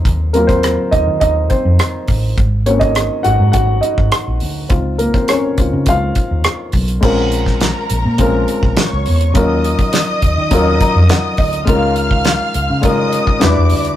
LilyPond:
<<
  \new Staff \with { instrumentName = "String section" } { \time 4/4 \key ees \dorian \tempo 4 = 103 r1 | r1 | r1 | <bes' bes''>2. <des'' des'''>4 |
<ees'' ees'''>1 | <f'' f'''>2 <ees'' ees'''>4 <d'' d'''>4 | }
  \new Staff \with { instrumentName = "Grand piano" } { \time 4/4 \key ees \dorian << { r8 <bes bes'>16 <c' c''>8. <ees' ees''>8 <ees' ees''>8 <c' c''>4 r8 | r8 <des' des''>16 <ees' ees''>8. <ges' ges''>8 <ges' ges''>8 <ees' ees''>4 r8 | r8 <bes bes'>16 <c' c''>16 <des' des''>4 <f' f''>4. r8 | r1 |
r2 r8 bes''8 ges''8 ees''8 | r1 | } \\ { r8 <ges c' f'>2.~ <ges c' f'>8 | r8 <bes c' ges'>4. r2 | <c' ees' f'>4. <c' ees' f'>8 r2 | <aes c' des' f' bes'>4. r8 <aes c' des' f' bes'>4. r8 |
<ges des' ees' f' bes'>4. r8 <ges des' ees' f' bes'>4. r8 | <aes des' ees' f' bes'>4. r8 <aes des' ees' f' bes'>4 <g d' e' fis' b'>4 | } >> }
  \new Staff \with { instrumentName = "Fingered electric bass" } { \clef bass \time 4/4 \key ees \dorian ees,4~ ees,16 r16 ees,16 ees16 ees,8 r16 f,16 r8 a,,8 | aes,,4~ aes,,16 r16 aes,,16 aes,16 aes,,8 r16 aes,,16 r16 bes,,16 d,8 | des,8. r8. des,16 des16 des,8 r16 ees,16 r8 ces,8 | bes,,4~ bes,,16 r16 bes,,16 bes,16 bes,,8 r16 bes,,16 r16 des,16 fes,8 |
ees,8. r8. ees,16 ees16 ees,8 r16 f,16 r8 d,8 | des,4~ des,16 r16 des,16 des4 r16 e,16 e,16 d,8 | }
  \new DrumStaff \with { instrumentName = "Drums" } \drummode { \time 4/4 <hh bd>8 hh16 <hh bd ss>16 <hh ss>8 <hh bd>8 <hh bd>8 <hh bd>8 <hh ss>8 <hho bd>8 | <hh bd>8 hh16 <hh bd ss>16 <hh ss>8 hh8 <hh bd>8 hh16 bd16 <hh ss>8 hho8 | <hh bd>8 hh16 <hh bd>16 <hh ss>8 <hh bd>8 <hh bd>8 <hh bd>8 <hh ss>8 <hho bd>16 hh16 | <cymc bd>8 hh16 <bd sn>16 <hh sn>8 hh8 <hh bd>8 hh16 bd16 <hh sn>8 hho16 hh16 |
<hh bd>8 hh16 <hh bd>16 <hh sn>8 <hh bd>8 <hh bd>8 <hh bd>8 <hh sn>8 <hho bd>16 hh16 | <hh bd>8 hh16 bd16 <hh sn>8 hh8 <hh bd>8 hh16 bd16 <hh sn>8 hho16 hh16 | }
>>